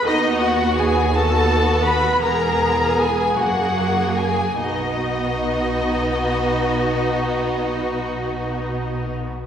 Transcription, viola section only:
X:1
M:12/8
L:1/8
Q:3/8=50
K:B
V:1 name="Viola section"
D F G =A2 B ^A2 G F2 G | D8- D3 z |]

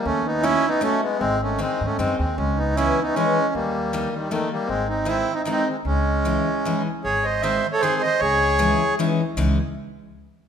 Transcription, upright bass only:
X:1
M:3/4
L:1/8
Q:"Swing" 1/4=155
K:C#m
V:1 name="Upright bass" clef=bass
D,,4 z2 | G,,,3 G,, F,, D,, | C,,4 z2 | D,,4 z2 |
G,,,4 z2 | C,,4 z2 | G,,,4 z2 | C,,4 z2 |
C,, z4 z |]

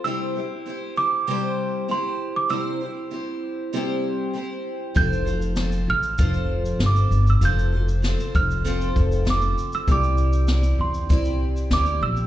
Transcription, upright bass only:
X:1
M:4/4
L:1/16
Q:1/4=98
K:F
V:1 name="Upright bass" clef=bass
z16 | z16 | F,,,6 A,,,2 F,,,4 G,,,2 G,,,2 | F,,,4- F,,, z F,,,4 F,,,4 z2 |
C,,6 E,,2 C,,4 D,,2 B,,,2 |]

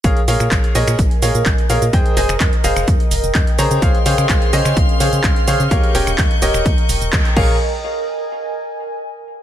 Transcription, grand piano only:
X:1
M:4/4
L:1/8
Q:1/4=127
K:Bbdor
V:1 name="Grand piano"
[ABdf] [ABdf]2 [ABde] z [ABdf] z [ABdf] | [Aceg] [Acea] z [Acef] z3 [Acdb] | [Acdf] [Acdf]2 [Acde] z [Acdf] z [Acdf] | [GBdf] [GBdg] z [GBde] z3 [ABdf] |
z8 |]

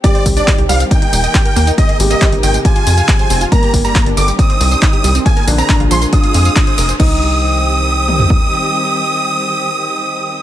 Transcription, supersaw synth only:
X:1
M:4/4
L:1/16
Q:1/4=138
K:Cm
V:1 name="Supersaw synth"
d2 z d2 z f z g6- g z | e2 z e2 z g z a6- a z | b2 z b2 z d' z e'6- e' z | a2 z b2 z c' z e'6- e' z |
e'16- | e'16 |]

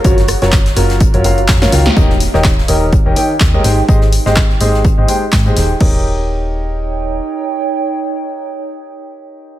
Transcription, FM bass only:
X:1
M:4/4
L:1/16
Q:"Swing 16ths" 1/4=125
K:Ebmix
V:1 name="FM bass" clef=bass
_G,,,2 z G,,,2 z G,,,2 z G,,,3 _G,, z D,, z | E,,,2 z E,,,2 z E,,,2 z E,,, z2 E,, z A,,, z | A,,,2 z A,,,2 z A,,,2 z A,,, z2 A,, z E,,, z | E,,,12 z4 |
z16 |]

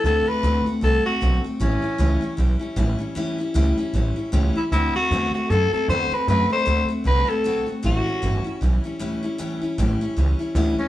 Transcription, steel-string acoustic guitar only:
X:1
M:4/4
L:1/8
Q:"Swing" 1/4=154
K:Amix
V:1 name="Steel-string acoustic guitar"
[D,A,=CF] [A,CF] [D,A,CF] [A,CF] [D,A,CF] [A,CF] [D,A,CF] [A,CF] | [A,,E,G,CE] [G,CE] [A,,E,G,CE] [G,CE] [E,G,CE] [G,CE] [A,,E,G,CE] [G,CE] | [A,,E,G,CE] [G,CE] [A,,E,G,CE] [G,CE] [E,G,CE] [G,CE] [A,,E,G,CE] [G,CE] | [D,A,=CF] [A,CF] [D,A,CF] [A,CF] [D,A,CF] [A,CF] [D,A,CF] [A,CF] |
[D,A,=CF] [A,CF] [D,A,CF] [A,CF] [D,A,CF] [A,CF] [D,A,CF] [A,CF] | [A,,E,G,CE] [G,CE] [A,,E,G,CE] [G,CE] [E,G,CE] [G,CE] [A,,E,G,CE] [G,CE] | [A,,E,G,CE] [G,CE] [A,,E,G,CE] [G,CE] [E,G,CE] [G,CE] [A,,E,G,CE] [G,CE] |]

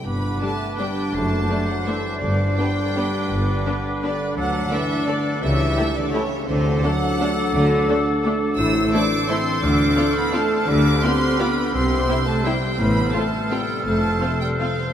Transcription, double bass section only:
X:1
M:3/4
L:1/8
Q:1/4=168
K:G
V:1 name="Double bass section" clef=bass
G,,,2 z4 | F,,,2 z4 | G,,,2 z4 | G,,,2 z4 |
D,,2 z4 | ^C,,2 z4 | D,,2 z4 | D,,2 z4 |
[K:Flyd] A,,,2 z4 | D,,2 z4 | D,,2 z4 | C,,2 z4 |
A,,,2 z4 | F,,,2 z4 |]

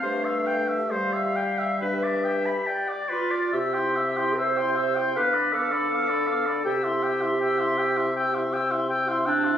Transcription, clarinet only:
X:1
M:4/4
L:1/8
Q:1/4=80
K:C
V:1 name="Clarinet"
G6- G F | G2 c2 B A3 | G6 z D |]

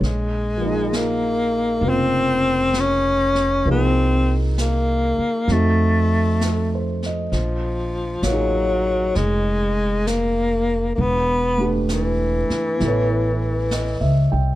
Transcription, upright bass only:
X:1
M:4/4
L:1/8
Q:"Swing" 1/4=66
K:Fphr
V:1 name="Upright bass" clef=bass
B,,,4 F,,,4 | C,,3 z F,,4 | B,,,2 =A,,,2 F,,,4 | =E,,,3 z =A,,,2- (3A,,, ^C,, =C,, |]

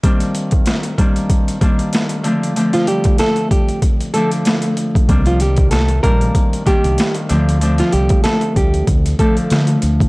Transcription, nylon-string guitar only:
X:1
M:4/4
L:1/16
Q:"Swing 16ths" 1/4=95
K:Cdor
V:1 name="Nylon-string guitar"
z16 | z [F,F] [G,G]2 [A,A]2 [G,G]2 z2 [A,A] z4 z | z [F,F] [G,G]2 [A,A]2 [B,B]4 [G,G]3 z3 | z [F,F] [G,G]2 [A,A]2 [G,G]2 z2 [A,A] z4 z |]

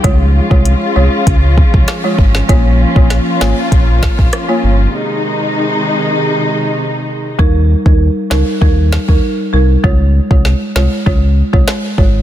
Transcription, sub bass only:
X:1
M:4/4
L:1/16
Q:1/4=98
K:Ebmix
V:1 name="Sub bass" clef=bass
D,,3 C,,2 z C,, z D,,3 C,, z2 A,,,2 | B,,,3 B,,,2 z A,,, z B,,,3 B,,, z2 G,,,2 | z16 | E,,3 E,,2 z D,, z E,,3 E,, z2 C,,2 |
D,,3 C,,2 z C,, z D,,3 C,, z2 A,,,2 |]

